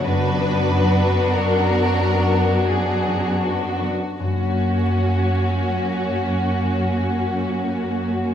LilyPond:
<<
  \new Staff \with { instrumentName = "Violin section" } { \time 3/4 \key fis \major \tempo 4 = 43 b'4 ais'4 gis'8 fis'8 | fis'2. | }
  \new Staff \with { instrumentName = "Harp" } { \time 3/4 \key fis \major << { <fis, fis' fis''>16 fis16 d'16 fis'16 b'16 d''16 fis''16 d''16 fis'16 fis16 d'16 fis16~ | fis2. | } \\ { r2. | <fis, fis cis' fis' ais' fis''>2. | } >> }
  \new Staff \with { instrumentName = "Violin section" } { \time 3/4 \key fis \major <d' fis'>2. | <cis' fis'>2. | }
  \new Staff \with { instrumentName = "Viola section" } { \clef bass \time 3/4 \key fis \major <fis b>2. | <fis ais>2. | }
  \new Staff \with { instrumentName = "Cello section" } { \clef bass \time 3/4 \key fis \major fis,2. | fis,2. | }
>>